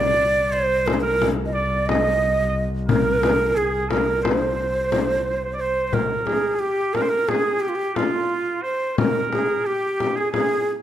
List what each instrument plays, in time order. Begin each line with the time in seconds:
Already playing: double bass C2, muted trumpet D5, ney D5
0.52 muted trumpet C5, ney C5
0.86 ney A#4, frame drum
0.93 ney C5
1.01 ney A#4, muted trumpet A#4
1.22 frame drum
1.46 ney D#5
1.53 ney D5, muted trumpet D5
1.86 ney D#5, muted trumpet D#5, frame drum
1.94 muted trumpet D#5
2.03 muted trumpet D#5
2.09 muted trumpet D#5
2.16 muted trumpet D#5
2.24 muted trumpet D#5
2.32 muted trumpet D#5
2.40 muted trumpet D#5
2.47 muted trumpet D#5
2.88 muted trumpet A#4, ney A#4, frame drum
3.23 frame drum
3.55 muted trumpet G#4, ney G#4
3.89 muted trumpet A#4, ney A#4, frame drum
4.23 ney C5, muted trumpet C5, frame drum
4.32 muted trumpet C5
4.38 muted trumpet C5
4.47 muted trumpet C5
4.54 muted trumpet C5
4.62 muted trumpet C5
4.69 muted trumpet C5
4.76 muted trumpet C5
4.83 muted trumpet C5
4.92 muted trumpet C5, frame drum
4.99 muted trumpet C5
5.06 muted trumpet C5
5.13 muted trumpet C5
5.23 muted trumpet C5
5.29 muted trumpet C5
5.37 muted trumpet C5
5.44 muted trumpet C5
5.53 muted trumpet D5
5.58 ney C5, muted trumpet C5
5.88 ney C5
5.93 muted trumpet A#4, ney A#4, frame drum
6.26 ney G#4, frame drum
6.54 muted trumpet G#4
6.59 ney G4, muted trumpet G4
6.93 ney A#4, muted trumpet A#4, frame drum
7.02 muted trumpet C5
7.09 muted trumpet A#4
7.28 ney G#4, muted trumpet G#4, frame drum
7.60 ney G4, muted trumpet G4
7.69 ney F4
7.75 ney G4
7.95 muted trumpet F4, ney F4, frame drum
8.63 muted trumpet C5, ney C5
8.98 ney A#4, muted trumpet A#4, frame drum
9.32 ney G#4, frame drum
9.65 muted trumpet G4, ney G4
10.00 frame drum
10.16 muted trumpet G#4, ney G#4
10.31 muted trumpet G#4, ney G#4, frame drum